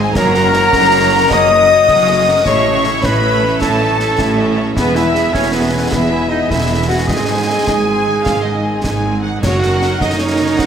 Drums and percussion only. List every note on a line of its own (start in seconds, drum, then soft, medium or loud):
0.15 concert bass drum medium
0.15 snare medium
0.15 crash soft
0.35 snare medium
0.54 snare medium
0.73 concert bass drum medium
0.73 snare medium
1.31 concert bass drum medium
1.31 snare medium
1.88 concert bass drum medium
1.88 snare medium
2.46 concert bass drum medium
2.46 snare medium
2.84 snare medium
3.03 concert bass drum medium
3.03 snare medium
3.62 concert bass drum medium
3.62 snare medium
4.00 snare medium
4.19 concert bass drum medium
4.19 snare medium
4.77 concert bass drum medium
4.77 snare medium
4.96 snare medium
5.15 snare medium
5.34 concert bass drum medium
5.34 snare medium
5.92 concert bass drum medium
5.92 snare medium
6.51 concert bass drum medium
6.51 snare medium
7.08 concert bass drum medium
7.08 snare medium
7.67 concert bass drum medium
7.67 snare medium
8.26 concert bass drum medium
8.26 snare medium
8.84 concert bass drum medium
8.84 snare medium
9.43 concert bass drum medium
9.43 snare medium
9.43 crash soft
9.63 snare soft
9.82 snare medium
10.01 concert bass drum medium
10.01 snare medium
10.59 concert bass drum medium
10.59 snare medium